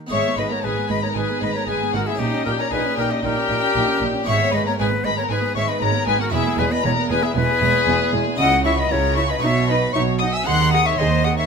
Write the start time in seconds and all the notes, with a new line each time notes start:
0.07 B3 D#4 G#4 C#6
0.11 G#1 G#2 G#3 C#5 E5
0.25 B3
0.37 G#1 G#2 G#3 B4 D#5 B5
0.50 B3 A#4 C#5 A#5
0.63 G#1 G#2 G#3 G#4 B4 G#5
0.77 B3
0.89 G#1 G#2 G#3 B4 D#5 B5
1.02 B3 A#4 C#5 A#5
1.15 G#1 G#2 G#3 G#4 B4 G#5
1.29 B3
1.41 G#1 G#2 G#3 B4 D#5 B5
1.55 B3 A#4 C#5 A#5
1.67 G#1 G#2 G#3 G#4 B4 G#5
1.80 B3
1.93 G#1 G#2 G#3 F#4 A#4 F#5
2.07 B3 E4 G#4 E5
2.15 C#4 D#4 G4
2.19 A#1 A#2 D#4 D#5
2.32 C#4
2.45 A#1 A#2 D#4 G4 A#4 G5
2.59 C#4 A#4 C#5 A#5
2.71 A#1 A#2 D#4 G#4 B4 G#5
2.84 C#4
2.97 A#1 A#2 D#4 G4 A#4 G5
3.10 C#4 D#4 G4 D#5
3.23 A#1 A#2 D#4 G4 A#4 G5
3.36 C#4
3.49 A#1 A#2 D#4
3.63 C#4
3.75 A#1 A#2 D#4
3.88 C#4
4.01 A#1 A#2 D#4
4.14 C#4
4.23 G#1 B3 D#4 G#4
4.27 G#2 G#3 C#5 E5 C#6
4.40 B3
4.52 G#1 G#2 G#3 B4 D#5 B5
4.66 B3 A#4 C#5 A#5
4.78 G#1 G#2 G#3 G#4 B4 G#5
4.92 B3
5.04 G#1 G#2 G#3 B4 D#5 B5
5.17 B3 A#4 C#5 A#5
5.29 G#1 G#2 G#3 G#4 B4 G#5
5.42 B3
5.56 G#1 G#2 G#3 C#5 E5 C#6
5.68 B3 B4 D#5 B5
5.81 G#1 G#2 G#3 A#4 C#5 A#5
5.93 B3
6.06 G#1 G#2 G#3 G#4 B4 G#5
6.19 B3 F#4 A#4 F#5
6.29 G#3 B3 E4 G#4 E5
6.33 E1 E2 G#4
6.45 B3
6.58 E1 E2 G#3 G#4 B4 G#5
6.70 B3 B4 D#5 B5
6.83 E1 E2 G#3 A#4 C#5 A#5
6.96 B3
7.09 E1 E2 G#3 G#4 B4 G#5
7.22 B3 E4 G#4 E5
7.35 E1 E2 G#3 G#4 B4 G#5
7.48 B3
7.61 E1 E2 G#3
7.74 B3
7.87 E1 E2 G#3
8.00 B3
8.13 E1 E2 G#3
8.26 B3
8.35 C#2 C#3 C#4 E4 F#4 D#5 D#6
8.39 C#3 F#5
8.65 E4 C#5 E5 C#6
8.78 B4 D#5 B5
8.90 C#2 C#3 E4 A#4 C#5 A#5
9.16 E4 C#5 E5 C#6
9.29 B4 D#5 B5
9.38 B1 D#4 F#4 C#6
9.43 B2 D#4 C#5 E5
9.68 D#4 B4 D#5 B5
9.94 B1 B2 D#4 C#5 E5 C#6
10.19 D#4 D#5 F#5 D#6
10.33 E5 G#5 E6
10.42 C4 D#4 G#4 F#6
10.46 D#2 D#3 G#4 F#5 C6
10.72 G#4 D#5 F#5 D#6
10.85 C#5 E5 C#6
10.98 D#2 D#3 G#4 C5 D#5 C6
11.24 G#4 D#5 F#5 D#6
11.36 C#5 E5 C#6